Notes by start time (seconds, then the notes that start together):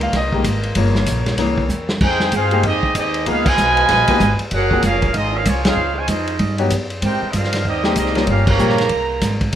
Already playing: C#2 D#3 G3 G#3 A#3 F4 A#4 D#5
0.01 F5, ride
0.13 C2 D#5, kick, snare, ride
0.32 D#3 G3 G#3 A#3, kick
0.44 G#1, kick, hi-hat pedal, ride
0.63 ride
0.75 G1 C#3 F3 A#3 F4 C#5, kick, ride
0.95 snare
1.06 A#1, kick, hi-hat pedal, ride
1.26 snare, ride
1.38 C2 C#3 E3 A#3 C4 E4 A#4 C#5, kick, snare, ride
1.58 kick
1.69 E2, hi-hat pedal
1.89 snare
2.01 F2 C4 D#4 G#4, kick, crash
2.05 D#4 G#4 C5 G5
2.20 snare
2.32 G2 C4 F4 G#4 C5 F5, kick, hi-hat pedal, ride
2.36 D#4
2.51 G#3 A#3 C4 D#4 G4, ride
2.63 F2 G#3 C4 D#4 G4 G#4 D#5, kick, ride
2.67 C4
2.83 muted upright bass stroke, kick
2.95 D#2 G#3 C4 D#4 G4 G#4 D#5, kick, hi-hat pedal, ride
3.14 ride
3.26 C#2 F3 G#3 A#3 B3 D#4 F4 G#4 B4 F5, kick, ride
3.46 B2 F3 G#3 F4 B4 D#5 G#5, kick, crash
3.57 B1, hi-hat pedal
3.77 ride
3.89 A#1, kick, snare, ride
4.08 F3 A#3 B3 D#4 G4, muted upright bass stroke, kick, ride
4.20 G#1, kick, hi-hat pedal
4.39 muted upright bass stroke, ride
4.51 F#1 A#3 C#4 F#4 G#4 A#4 F#5, kick, ride
4.71 F3 A#3 C4 C#4 G#4, kick
4.82 F1 A#3 C#4 F4 G#4 A#4 F5, kick, hi-hat pedal, ride
5.02 kick, ride
5.14 G#1 C4 D#4 F4 G#4 D#5, kick, ride
5.34 A#3 C#4 F4 G#4 A#4 F5
5.45 C2 F3 A#3 C#4 F4 G#4 C#5, kick, hi-hat pedal, ride
5.65 F3 G#3 C4 C#4 D#4 F4 G#4 C5 F5, snare, ride
5.76 C#2
5.96 C#3 F3 G#3 F4 C5 C#5 G#5
6.08 F2 F3 G#3 C#4 D#4 G#4 C5 D#5, kick, hi-hat pedal, ride
6.27 ride
6.39 G2, kick, ride
6.58 F#3 B3 C#4 D#4 G4, ride
6.70 F#2, kick, hi-hat pedal, ride
6.90 ride
7.02 G#2 C4 D#4 G4 A#4 C5 G5, kick, ride
7.22 muted upright bass stroke
7.30 G2 D#5, kick, hi-hat pedal, ride
7.34 G3 C4 D#4 F4 A#4 C5 F5
7.44 snare
7.53 snare, ride
7.65 D#2 G3 C4 D#4 G4 A#4 D#5, kick
7.84 G#3 A#3 C4 D#4 G4, snare
7.96 C2 G3 C4 D#4 G4 A#4 D#5, kick, hi-hat pedal, ride
8.06 snare
8.15 G3 A#3 C#4 F4 A#4, snare, ride
8.27 G1 A#3 C#4 F4 G4 A#4 F5, kick, ride
8.47 C#3 F3 A#3 G4 C#5 F5 A#5, kick, crash
8.59 A#1 G3 A#3 C#4 F4 G4, hi-hat pedal
8.69 snare
8.78 snare, ride
8.89 C2, kick, ride
9.21 G#1, kick, snare, hi-hat pedal, ride
9.41 kick, ride